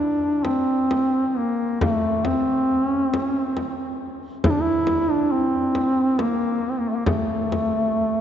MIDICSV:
0, 0, Header, 1, 3, 480
1, 0, Start_track
1, 0, Tempo, 911854
1, 949, Tempo, 879765
1, 950, Time_signature, 3, 2, 24, 8
1, 4444, End_track
2, 0, Start_track
2, 0, Title_t, "Duduk"
2, 0, Program_c, 0, 69
2, 0, Note_on_c, 0, 62, 73
2, 231, Note_on_c, 0, 60, 76
2, 239, Note_off_c, 0, 62, 0
2, 673, Note_off_c, 0, 60, 0
2, 673, Note_on_c, 0, 60, 54
2, 722, Note_on_c, 0, 58, 70
2, 729, Note_off_c, 0, 60, 0
2, 948, Note_off_c, 0, 58, 0
2, 951, Note_on_c, 0, 57, 75
2, 1194, Note_on_c, 0, 60, 77
2, 1202, Note_off_c, 0, 57, 0
2, 1532, Note_off_c, 0, 60, 0
2, 1532, Note_on_c, 0, 61, 77
2, 1625, Note_off_c, 0, 61, 0
2, 1625, Note_on_c, 0, 60, 77
2, 1723, Note_off_c, 0, 60, 0
2, 1723, Note_on_c, 0, 61, 77
2, 1816, Note_off_c, 0, 61, 0
2, 1816, Note_on_c, 0, 60, 77
2, 2151, Note_off_c, 0, 60, 0
2, 2396, Note_on_c, 0, 64, 96
2, 2421, Note_on_c, 0, 62, 89
2, 2429, Note_off_c, 0, 64, 0
2, 2483, Note_on_c, 0, 64, 104
2, 2491, Note_off_c, 0, 62, 0
2, 2751, Note_on_c, 0, 62, 85
2, 2760, Note_off_c, 0, 64, 0
2, 2867, Note_on_c, 0, 60, 89
2, 2876, Note_off_c, 0, 62, 0
2, 3345, Note_on_c, 0, 58, 75
2, 3353, Note_off_c, 0, 60, 0
2, 3622, Note_on_c, 0, 60, 57
2, 3631, Note_off_c, 0, 58, 0
2, 3672, Note_on_c, 0, 58, 60
2, 3680, Note_off_c, 0, 60, 0
2, 3725, Note_on_c, 0, 57, 62
2, 3733, Note_off_c, 0, 58, 0
2, 3763, Note_on_c, 0, 58, 62
2, 3772, Note_off_c, 0, 57, 0
2, 3818, Note_off_c, 0, 58, 0
2, 3820, Note_on_c, 0, 57, 76
2, 4444, Note_off_c, 0, 57, 0
2, 4444, End_track
3, 0, Start_track
3, 0, Title_t, "Frame drum"
3, 235, Note_on_c, 9, 64, 45
3, 287, Note_off_c, 9, 64, 0
3, 478, Note_on_c, 9, 64, 45
3, 531, Note_off_c, 9, 64, 0
3, 954, Note_on_c, 9, 64, 62
3, 1009, Note_off_c, 9, 64, 0
3, 1192, Note_on_c, 9, 64, 49
3, 1246, Note_off_c, 9, 64, 0
3, 1677, Note_on_c, 9, 64, 50
3, 1731, Note_off_c, 9, 64, 0
3, 1911, Note_on_c, 9, 64, 44
3, 1966, Note_off_c, 9, 64, 0
3, 2388, Note_on_c, 9, 64, 64
3, 2442, Note_off_c, 9, 64, 0
3, 2622, Note_on_c, 9, 64, 44
3, 2676, Note_off_c, 9, 64, 0
3, 3103, Note_on_c, 9, 64, 44
3, 3157, Note_off_c, 9, 64, 0
3, 3343, Note_on_c, 9, 64, 48
3, 3397, Note_off_c, 9, 64, 0
3, 3820, Note_on_c, 9, 64, 69
3, 3874, Note_off_c, 9, 64, 0
3, 4070, Note_on_c, 9, 64, 44
3, 4124, Note_off_c, 9, 64, 0
3, 4444, End_track
0, 0, End_of_file